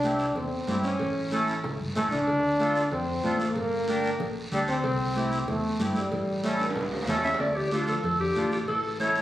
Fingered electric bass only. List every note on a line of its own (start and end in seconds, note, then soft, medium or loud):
0.00 0.35 C2 medium
0.35 0.61 E2 loud
0.68 0.93 G2 medium
1.00 1.64 A1 loud
1.64 1.77 C#2 medium
1.80 1.94 G1 medium
1.96 2.10 A1 medium
2.12 2.26 C#2 medium
2.28 2.92 D2 medium
2.92 3.17 F2 loud
3.24 3.50 A1 loud
3.56 4.20 G1 loud
4.20 4.46 A#1 loud
4.52 4.77 D2 medium
4.84 5.48 C2 loud
5.48 5.73 E2 loud
5.79 6.05 G2 medium
6.11 6.75 A1 loud
6.75 7.01 C#2 medium
7.07 7.33 E2 medium
7.40 7.91 D2 medium
8.04 8.29 F2 loud
8.68 9.19 A1 medium